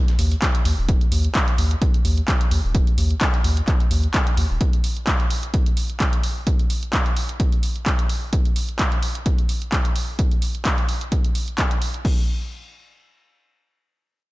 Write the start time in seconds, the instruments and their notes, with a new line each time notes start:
0.08 snare, closed hi-hat
0.19 analog synth bass D#2, closed hi-hat, open hi-hat
0.31 closed hi-hat
0.42 kick, snare, clap, closed hi-hat
0.55 closed hi-hat
0.65 analog synth bass D#2, closed hi-hat, open hi-hat
0.78 analog synth bass D#1
0.89 kick, closed hi-hat
1.01 closed hi-hat
1.12 analog synth bass D#2, open hi-hat
1.25 closed hi-hat
1.35 kick, clap, closed hi-hat
1.48 closed hi-hat
1.58 analog synth bass D#2, open hi-hat
1.71 closed hi-hat
1.82 kick, closed hi-hat
1.94 closed hi-hat
2.05 analog synth bass D#2, open hi-hat
2.18 closed hi-hat
2.28 kick, clap, closed hi-hat
2.41 closed hi-hat
2.51 analog synth bass D#2, open hi-hat
2.64 analog synth bass D#1
2.75 kick, closed hi-hat
2.87 closed hi-hat
2.98 analog synth bass D#2, open hi-hat
3.11 closed hi-hat
3.21 kick, clap, closed hi-hat
3.34 closed hi-hat
3.44 analog synth bass D#2, open hi-hat
3.57 closed hi-hat
3.68 kick, clap, closed hi-hat
3.80 closed hi-hat
3.91 analog synth bass D#2, open hi-hat
4.04 closed hi-hat
4.14 kick, clap, closed hi-hat
4.27 closed hi-hat
4.37 analog synth bass D#2, open hi-hat
4.50 analog synth bass D#1
4.61 kick, closed hi-hat
4.73 closed hi-hat
4.84 open hi-hat
4.97 closed hi-hat
5.07 kick, clap, closed hi-hat
5.20 closed hi-hat
5.30 open hi-hat
5.43 closed hi-hat
5.54 kick, closed hi-hat
5.66 closed hi-hat
5.77 open hi-hat
5.90 closed hi-hat
6.00 kick, clap, closed hi-hat
6.13 closed hi-hat
6.23 open hi-hat
6.47 kick, closed hi-hat
6.59 closed hi-hat
6.70 open hi-hat
6.83 closed hi-hat
6.93 kick, clap, closed hi-hat
7.06 closed hi-hat
7.17 open hi-hat
7.29 closed hi-hat
7.40 kick, closed hi-hat
7.52 closed hi-hat
7.63 open hi-hat
7.76 closed hi-hat
7.86 kick, clap, closed hi-hat
7.99 closed hi-hat
8.09 open hi-hat
8.33 kick, closed hi-hat
8.45 closed hi-hat
8.56 open hi-hat
8.69 closed hi-hat
8.79 kick, clap, closed hi-hat
8.92 closed hi-hat
9.03 open hi-hat
9.15 closed hi-hat
9.26 kick, closed hi-hat
9.38 closed hi-hat
9.49 open hi-hat
9.62 closed hi-hat
9.72 kick, clap, closed hi-hat
9.85 closed hi-hat
9.96 open hi-hat
10.19 kick, closed hi-hat
10.31 closed hi-hat
10.42 open hi-hat
10.55 closed hi-hat
10.65 kick, clap, closed hi-hat
10.78 closed hi-hat
10.89 open hi-hat
11.01 closed hi-hat
11.12 kick, closed hi-hat
11.24 closed hi-hat
11.35 open hi-hat
11.48 closed hi-hat
11.58 kick, clap, closed hi-hat
11.71 closed hi-hat
11.82 open hi-hat
11.94 closed hi-hat
12.05 kick, crash